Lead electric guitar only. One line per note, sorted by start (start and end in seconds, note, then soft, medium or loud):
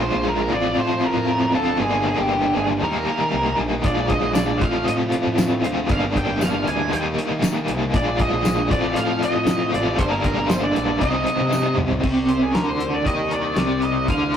0.01 0.28 C5 loud
0.28 0.54 A#4 loud
0.52 0.76 D5 medium
0.79 1.05 C5 loud
1.04 1.54 A#4 loud
1.54 1.79 A4 medium
1.80 2.06 G#4 medium
2.06 2.09 G4 medium
2.06 2.18 G#4 medium
2.18 2.54 G4 medium
2.56 2.63 G#4 medium
2.83 3.56 A#4 medium
3.85 4.08 D5 medium
4.09 4.33 D#5 medium
4.33 4.61 D5 medium
4.58 4.84 F5 loud
4.85 4.92 D#5 medium
5.93 5.99 F5 loud
6.17 6.43 G5 loud
6.42 6.65 F5 medium
6.68 6.92 G#5 loud
6.92 6.99 G5 medium
7.95 8.20 D5 loud
8.21 8.70 D#5 loud
8.71 8.95 D5 loud
8.97 9.21 F5 medium
9.24 9.71 D#5 loud
9.73 10.00 D5 medium
9.98 10.10 C5 loud
10.10 10.47 A#4 medium
10.49 10.62 C5 medium
10.63 11.00 D5 medium
11.01 11.74 D#5 medium
12.29 12.42 C5 medium
12.43 12.54 G#4 medium
12.54 12.68 A#4 medium
12.68 12.94 C5 medium
12.94 13.07 D5 medium
13.07 13.32 D#5 medium
13.33 13.84 D5 loud
13.84 14.08 D#5 medium
14.09 14.35 F5 loud